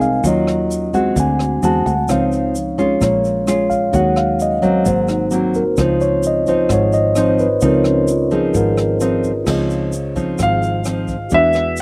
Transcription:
Already playing: C2 C3 G#3 C4 D#4 A#4 D#5 F5 G#5
0.01 F5, kick, closed hi-hat, shaker
0.24 D#2 D#3 F#3 C#4 F4 D#5, kick, closed hi-hat, shaker
0.47 cross-stick, closed hi-hat, shaker
0.70 closed hi-hat, shaker
0.93 G#3 C4 F#4 F#5, kick, closed hi-hat, shaker
1.16 D2 D3 G#3 C4 F#4 G#5, kick, closed hi-hat, shaker
1.39 cross-stick, closed hi-hat, shaker
1.62 E2 G#3 C4 F#4 A5, closed hi-hat, shaker
1.86 D2 F#5, kick, closed hi-hat, shaker
2.08 C#2 C#3 F3 C4 D#4 F5, kick, cross-stick, closed hi-hat, shaker
2.32 closed hi-hat, shaker
2.55 closed hi-hat, shaker
2.78 G#3 C#4 F4, kick, closed hi-hat, shaker
3.00 A#1 A#2 G#3 C#4 C#5, kick, cross-stick, closed hi-hat, shaker
3.24 closed hi-hat, shaker
3.47 G#3 C#4 F4, cross-stick, closed hi-hat, shaker
3.70 F5, kick, closed hi-hat, shaker
3.93 D#2 D#3 F#3 G#3 C#4 F#4 F#5, kick, closed hi-hat, shaker
4.16 F5, cross-stick, closed hi-hat, shaker
4.39 D#5, closed hi-hat, shaker
4.62 F#3 A#3 C4 C#5, kick, closed hi-hat, shaker
4.85 G#1 G#2 A#3 C4 F#4 C5, kick, closed hi-hat, shaker
5.08 D#4, cross-stick, closed hi-hat, shaker
5.31 F#3 A#3 C4, closed hi-hat, shaker
5.35 F#4
5.54 A#4, kick, closed hi-hat, shaker
5.77 C#2 C#3 F3 C4 D#4 F4, kick, cross-stick, closed hi-hat, shaker
5.81 C5
6.00 C#5, closed hi-hat, shaker
6.23 closed hi-hat, shaker
6.27 D#5
6.46 F3 C4 D#4 F4 C5, kick, closed hi-hat, shaker
6.69 G#1 G#2, kick, cross-stick, closed hi-hat, shaker
6.73 C#5
6.93 D#5, closed hi-hat, shaker
7.15 F3 C4 D#4 C5, cross-stick, closed hi-hat, shaker
7.39 B4, kick, closed hi-hat, shaker
7.61 C#2 C#3 F3 C4 D#4 F4, kick, closed hi-hat, shaker
7.65 A#4
7.84 C#4, cross-stick, closed hi-hat, shaker
8.07 F4, closed hi-hat, shaker
8.31 F3 C4 D#4 G#4, kick, closed hi-hat, shaker
8.54 G#1 G#2 A#4, kick, closed hi-hat, shaker
8.77 cross-stick, closed hi-hat, shaker
9.01 F3 C4 D#4, closed hi-hat, shaker
9.24 kick, closed hi-hat, shaker
9.44 C#2 C#3 F3 C4 D#4 F4 G#4 C5, kick, cross-stick, crash, shaker
9.50 D#5
9.70 closed hi-hat, shaker
9.93 closed hi-hat, shaker
10.16 F3 C4 D#4, kick, closed hi-hat, shaker
10.38 G#1 G#2, kick, cross-stick, closed hi-hat, shaker
10.43 F5
10.62 closed hi-hat, shaker
10.85 F3 C4 D#4, cross-stick, closed hi-hat, shaker
11.08 kick, closed hi-hat, shaker
11.28 E2 E3 G#3 D4 F#4 G#4, kick, closed hi-hat, shaker
11.33 F#4 B4 D5 E5
11.53 cross-stick, closed hi-hat, shaker
11.77 closed hi-hat, shaker

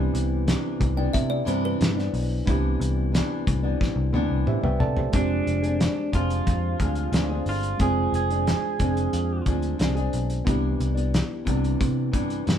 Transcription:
Already playing: C3 E3 B3 D4 E4 G4
0.14 C2, closed hi-hat
0.47 C3 E3 B3 D4, snare, closed hi-hat
0.80 C2, kick, closed hi-hat
0.97 C3 E3 B3 D4 G5
1.13 C3 E5, kick, closed hi-hat
1.30 D5
1.45 G2 C3 E3 B3 D4 C5, closed hi-hat
1.65 B4
1.81 G2, snare, closed hi-hat
1.96 E3 B3 D4, snare
2.14 B1, open hi-hat
2.46 C2 C3 E3 B3 D4 E4, kick, closed hi-hat
2.51 G4
2.80 C2, closed hi-hat
3.12 C3 E3 B3 D4, snare, closed hi-hat
3.47 C2, kick, closed hi-hat
3.63 C3 E3 B3 D4
3.81 kick, snare
3.96 C2
4.13 D2 C3 E3 B3 D4, high tom
4.30 C2
4.47 G4 C5 E5, muted picked electric bass stroke, mid tom
4.61 C2 E3 B3 D4 B4 E5 G5, mid tom
4.80 C3 A4 D5 A5, floor tom
4.97 G4 C5, floor tom
5.11 F1 F3 G#3 C4 D4 G#4, kick, closed hi-hat
5.16 G4
5.47 F1, closed hi-hat
5.62 D4 G#4, closed hi-hat
5.66 C4
5.80 snare, closed hi-hat
6.12 F1 F3 C4 D4 F4 G#4, kick, closed hi-hat
6.30 closed hi-hat
6.47 F2, kick, closed hi-hat
6.78 D2 F3 C4 D4, kick, closed hi-hat
6.82 G#4
6.95 closed hi-hat
7.12 D2 F3 C4 D4 G#4, snare, closed hi-hat
7.29 C4 D4 G#4
7.46 G1 F4, open hi-hat
7.63 closed hi-hat
7.77 F1 F3 G#3 C4 D4, kick, closed hi-hat
7.81 D4 F4 G#4
8.12 F1 G#4, closed hi-hat
8.30 C4 D4 G#4, closed hi-hat
8.47 snare, closed hi-hat
8.78 F1 F3 C4 D4 G#4, kick, closed hi-hat
8.97 closed hi-hat
9.13 F2, closed hi-hat
9.45 D2 F3 C4 D4 G#4, kick, closed hi-hat
9.62 closed hi-hat
9.78 C2 F3 C4 D4 G#4, snare, closed hi-hat
9.95 C4 D4 G#4, closed hi-hat
10.13 B1, closed hi-hat
10.30 closed hi-hat
10.45 C2 C3 E3 B3 D4 E4, kick, closed hi-hat
10.49 G4
10.80 C2, closed hi-hat
10.94 E3 B3 D4, closed hi-hat
11.14 snare, closed hi-hat
11.45 C2 C3 E3 B3 D4, kick, closed hi-hat
11.64 closed hi-hat
11.80 C3, kick, closed hi-hat
12.11 G2 C3 E3 B3 D4, kick, closed hi-hat
12.30 closed hi-hat
12.45 G2 C3 E3 B3 D4, snare, closed hi-hat

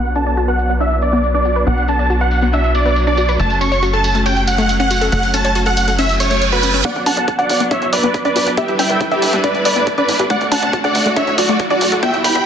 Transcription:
Already playing: B1 F#3 B3 D4 F#5
0.05 closed hi-hat, tambourine
0.15 D4 A5, closed hi-hat, tambourine
0.26 D5, closed hi-hat, tambourine
0.37 F#4, closed hi-hat, tambourine
0.48 B4 F#5, closed hi-hat
0.59 closed hi-hat, tambourine
0.69 B3, closed hi-hat, tambourine
0.80 D4 E5, closed hi-hat, tambourine
0.91 closed hi-hat
1.01 D5, closed hi-hat, tambourine
1.13 B3, closed hi-hat, tambourine
1.24 closed hi-hat, tambourine
1.34 D4 D5, closed hi-hat
1.45 F#4, closed hi-hat, tambourine
1.56 B4, closed hi-hat, tambourine
1.67 B1 B3 F#5, closed hi-hat, tambourine
1.78 closed hi-hat, tambourine
1.88 D4 A5, closed hi-hat, tambourine
1.99 D5, closed hi-hat, tambourine
2.10 F#4, closed hi-hat, tambourine
2.21 B4 F#5, closed hi-hat
2.31 closed hi-hat, tambourine
2.42 B3, closed hi-hat, tambourine
2.53 D4 E5, closed hi-hat, tambourine
2.64 closed hi-hat
2.75 D5, closed hi-hat, tambourine
2.86 B3, closed hi-hat, tambourine
2.96 closed hi-hat, tambourine
3.07 D4 D5, closed hi-hat
3.17 F#4, closed hi-hat, tambourine
3.29 B4, closed hi-hat, tambourine
3.39 F#1 A3 C#4 A5, closed hi-hat, tambourine
3.50 closed hi-hat, tambourine
3.61 C#4 C#6, closed hi-hat, tambourine
3.72 C#5, closed hi-hat, tambourine
3.82 F#4, closed hi-hat, tambourine
3.93 A4 A5, closed hi-hat
4.04 closed hi-hat, tambourine
4.15 A3, closed hi-hat, tambourine
4.26 C#4 G5, closed hi-hat, tambourine
4.37 closed hi-hat
4.47 F#5, closed hi-hat, tambourine
4.58 A3, closed hi-hat, tambourine
4.69 closed hi-hat, tambourine
4.80 C#4 F#5, closed hi-hat
4.90 F#4, closed hi-hat, tambourine
5.01 A4, closed hi-hat, tambourine
5.12 F#1 A3 F#5, closed hi-hat, tambourine
5.23 closed hi-hat, tambourine
5.33 C#4 A5, closed hi-hat, tambourine
5.45 C#5, closed hi-hat, tambourine
5.55 F#4, closed hi-hat, tambourine
5.66 A4 F#5, closed hi-hat, tambourine
5.77 closed hi-hat, tambourine
5.88 A3, closed hi-hat, tambourine
5.98 C#4 E5, closed hi-hat, tambourine, reverse cymbal
6.09 closed hi-hat, tambourine
6.20 C#5, closed hi-hat, tambourine
6.31 A3, closed hi-hat, tambourine
6.42 closed hi-hat, tambourine
6.52 F#4 B4, closed hi-hat, tambourine
6.63 C#4, closed hi-hat, tambourine
6.74 C#4, closed hi-hat, tambourine
6.85 F#3 B3 D4 D5 F#5, kick, closed hi-hat, riser
6.96 B1, closed hi-hat
7.06 B1 D4 F#5 A5, open hi-hat
7.17 B1 D5, closed hi-hat
7.28 F#4, kick, closed hi-hat
7.39 B1 B4 D5 F#5, closed hi-hat
7.49 B1, open hi-hat
7.60 F#1 B3, closed hi-hat
7.71 D4 C#5 E5, kick, closed hi-hat
7.82 B1, closed hi-hat
7.93 B1 B4 D5, open hi-hat
8.03 B1 B3, closed hi-hat
8.14 kick, closed hi-hat
8.25 B1 D4 B4 D5, closed hi-hat
8.36 B1 F#4, open hi-hat
8.46 F#1 B4, closed hi-hat
8.57 G3 B3 E4 G4 A4 B4 E5, kick, closed hi-hat
8.68 G1, closed hi-hat
8.79 G1 D4 E5 G5, open hi-hat
8.90 G1 B4, closed hi-hat
9.01 E4, kick, closed hi-hat
9.11 G1 G4 E5, closed hi-hat
9.22 G1, open hi-hat
9.33 G2 B3, closed hi-hat
9.44 D4 B4 D5, kick, closed hi-hat
9.54 G1, closed hi-hat
9.65 G1 B4 D5, open hi-hat
9.76 G1 B3, closed hi-hat
9.87 kick, closed hi-hat
9.98 G1 D4 B4 D5, closed hi-hat
10.08 G1 E4, open hi-hat
10.19 G2 G4, closed hi-hat
10.30 A3 F#4 D5 F#5, kick, closed hi-hat
10.41 D2, closed hi-hat
10.52 D2 D4 F#5 A5, open hi-hat
10.63 D2 D5, closed hi-hat
10.73 F#4, kick, closed hi-hat
10.84 D2 A4 D5 F#5, closed hi-hat
10.95 D2, open hi-hat
11.06 D1 A3, closed hi-hat
11.16 D4 C#5 E5, kick, closed hi-hat
11.27 D2, closed hi-hat
11.38 D2 F#4 D5, open hi-hat
11.49 D2 A3, closed hi-hat
11.60 kick, closed hi-hat
11.70 D2 D4 F#4 D5, closed hi-hat
11.81 D2 F#4, open hi-hat
11.92 D1 A4, closed hi-hat
12.03 G3 B3 E4 E5 G5, kick, closed hi-hat
12.14 E2, closed hi-hat
12.24 E2 E4 G5 B5, open hi-hat
12.35 E2 E5, closed hi-hat

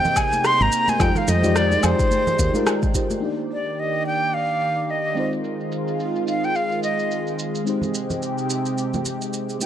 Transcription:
Already playing: C3 A#3 D#4 G4 G#4 C5 D#5 G5
0.05 low conga, shaker
0.16 G#5, kick, low woodblock, shaker
0.33 high conga, shaker
0.44 C6, cross-stick, shaker
0.61 G#1 A#5, shaker
0.72 shaker
0.88 G#5, high conga, shaker
0.99 F2 D#3 G#3 D#4 F4 G4 C5 G5, kick, low woodblock, shaker
1.15 F5, cross-stick, low conga, shaker
1.28 F2 D#5, high conga, shaker
1.42 G#3 D#4 F4 G4 D5, low conga, shaker
1.56 D5, cross-stick, shaker
1.72 high conga, shaker
1.81 F2 G#3 D#4 F4 G4 C5, low woodblock, shaker
1.86 D5
1.99 kick, shaker
2.11 high conga, shaker
2.27 low conga, shaker
2.39 D#2, kick, shaker
2.54 G#3 D#4 F4 G4 A#4, high conga, shaker
2.67 cross-stick, low woodblock, shaker
2.83 kick, shaker
2.93 G#3 D#4 F4 G4 C5, kick, shaker
3.10 high conga, shaker
3.20 D#3 A#3 D4 D#4 G4 D5, shaker
3.25 D5
3.39 shaker
3.50 D5, shaker
3.66 shaker
3.78 D#5, shaker
4.05 G5, shaker
4.33 F5, shaker
4.49 shaker
4.61 shaker
4.77 shaker
4.89 D#5, shaker
5.05 shaker
5.15 G#3 C4 D#4 F4, shaker
5.19 C5
5.33 shaker
5.44 shaker
5.60 shaker
5.72 shaker
5.88 shaker
6.00 shaker
6.16 shaker
6.28 F5, shaker
6.44 G5, shaker
6.55 F5, shaker
6.72 shaker
6.83 D#5, shaker
6.99 shaker
7.11 shaker
7.27 shaker
7.39 shaker
7.55 shaker
7.64 C3 G#3 C4 D#4 G4, shaker
7.69 C5
7.82 low conga, shaker
7.94 shaker
8.10 low conga, shaker
8.22 shaker
8.38 shaker
8.50 shaker
8.66 shaker
8.78 shaker
8.94 high conga, low conga, shaker
9.05 muted conga, shaker
9.22 shaker
9.33 shaker
9.49 shaker
9.59 D#3 G#3 A#3 D#4 G#4 G5, shaker

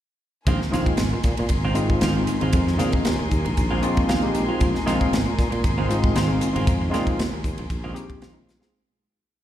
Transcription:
0.47 A#1 D#3 G#3 C4 D#4 F4 A#4 G#5 C6, kick, hi-hat pedal, ride
0.61 muted clean electric guitar stroke, snare
0.71 A#1 D#3 G#3 C4 D#4 F4, snare, hi-hat pedal, ride
0.86 muted clean electric guitar stroke, kick, ride
0.97 G#1, muted clean electric guitar stroke, snare, hi-hat pedal, ride
1.11 A#2 D#4 F4, muted clean electric guitar stroke
1.23 A#2, kick, snare, hi-hat pedal, ride
1.37 A#2, muted clean electric guitar stroke, ride
1.49 G#1, kick, hi-hat pedal, ride
1.65 D#3 G#3 C4 F4
1.74 G#3 C4 D#4 F4, muted clean electric guitar stroke, hi-hat pedal, ride
1.90 kick
2.01 G#1 D#3 G#3 C4 F4, snare, hi-hat pedal, ride
2.16 G#3 C4 D#4 F4, muted clean electric guitar stroke
2.27 muted clean electric guitar stroke, hi-hat pedal, ride
2.41 G#1 G#3 C4 D#4 F4, ride
2.53 F2, kick, hi-hat pedal, ride
2.67 muted clean electric guitar stroke, snare
2.77 A#2 D#3 G#3 C4 D#4 F4, snare, hi-hat pedal, ride
2.92 muted clean electric guitar stroke, muted fretless electric bass stroke, kick, ride
3.05 D#2, muted clean electric guitar stroke, snare, hi-hat pedal, ride
3.19 D#2 D#4 G#4, muted clean electric guitar stroke
3.31 D#2, kick, hi-hat pedal, ride
3.45 A#1, muted clean electric guitar stroke, ride
3.57 A#1, kick, hi-hat pedal, ride
3.71 D#3 G#3 C4 F4
3.83 G#3 C4 D#4 F4 D#5, muted clean electric guitar stroke, hi-hat pedal, ride
3.97 kick, ride
4.08 D#3 G#3 C4 F4 F5, snare, hi-hat pedal, ride
4.22 G#3 C4 D#4 G4, muted clean electric guitar stroke
4.35 G5, muted clean electric guitar stroke, hi-hat pedal, ride
4.48 G#3 C4 D#4 F4
4.61 A#1, kick, hi-hat pedal, ride
4.75 muted clean electric guitar stroke, snare
4.86 A#1 D#3 G#3 C4 D#4 F4, snare, hi-hat pedal, ride
5.00 muted clean electric guitar stroke, kick, ride
5.12 G#1, muted clean electric guitar stroke, snare, hi-hat pedal, ride
5.25 A#2 D#4 F4, muted clean electric guitar stroke
5.38 A#2, kick, snare, hi-hat pedal, ride
5.51 A#2, muted clean electric guitar stroke, ride
5.64 G#1, kick, hi-hat pedal, ride
5.78 D#3 G#3 C4 F4
5.89 G#3 C4 D#4 F4, muted clean electric guitar stroke, hi-hat pedal, ride
6.04 kick
6.15 G#1 D#3 G#3 C4 F4, snare, hi-hat pedal, ride
6.27 G#3 C4 D#4 F4, muted clean electric guitar stroke
6.41 muted clean electric guitar stroke, hi-hat pedal, ride
6.53 G#1 G#3 C4 D#4 F4, ride
6.67 F2, kick, hi-hat pedal, ride
6.82 muted clean electric guitar stroke
6.90 A#2 D#3 G#3 C4 D#4 F4
6.94 G#3 C4 F4, snare, hi-hat pedal, ride
7.07 muted fretless electric bass stroke, muted clean electric guitar stroke, kick, ride
7.19 D#2, muted clean electric guitar stroke, snare, hi-hat pedal, ride
7.32 D#2 D#4 F4, muted clean electric guitar stroke
7.44 D#2, kick, hi-hat pedal, ride
7.58 A#1, muted clean electric guitar stroke, ride
7.70 A#1, kick, hi-hat pedal, ride
7.84 D#3 G#3 C4 F4
7.93 G#3 C4 D#4 G4, hi-hat pedal, ride
8.10 kick, ride
8.21 D#3 G#3 C4 F4, snare, hi-hat pedal, ride
8.32 G#3 C4 D#4 F4, muted clean electric guitar stroke
8.47 muted clean electric guitar stroke, snare, hi-hat pedal
8.59 G#3 C4 D#4 F4 G#4, snare

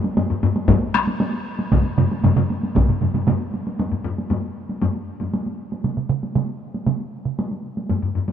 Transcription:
0.04 taiko high
0.17 taiko low-mid, taiko high
0.30 taiko low-mid
0.43 taiko low-mid, taiko high
0.56 taiko high
0.68 taiko, taiko low-mid, taiko high
0.94 taiko rim, taiko high
1.07 taiko high
1.20 taiko high
1.59 taiko high
1.72 taiko, taiko low-mid, taiko mid, taiko high
1.98 taiko low-mid, taiko mid, taiko high
2.12 taiko high
2.24 taiko low-mid, taiko mid, taiko high
2.36 taiko low-mid, taiko mid
2.50 taiko high
2.63 taiko high
2.75 taiko, taiko low-mid, taiko mid, taiko high
2.88 taiko low-mid, taiko mid
3.01 taiko low-mid, taiko mid, taiko high
3.14 taiko low-mid, taiko mid, taiko high
3.27 taiko low-mid, taiko mid, taiko high
3.54 taiko high
3.67 taiko high
3.79 taiko low-mid, taiko high
3.92 taiko low-mid
4.04 taiko low-mid
4.18 taiko high
4.30 taiko low-mid, taiko high
4.69 taiko high
4.82 taiko low-mid, taiko high
5.20 taiko low-mid, taiko high
5.34 taiko high
5.46 taiko high
5.72 taiko high
5.84 taiko mid, taiko high
5.97 taiko mid
6.09 taiko mid
6.23 taiko high
6.35 taiko mid, taiko high
6.74 taiko high
6.86 taiko mid, taiko high
7.25 taiko mid
7.39 taiko high
7.51 taiko high
7.77 taiko high
7.89 taiko low-mid, taiko high
8.03 taiko low-mid
8.15 taiko low-mid
8.28 taiko low-mid, taiko high

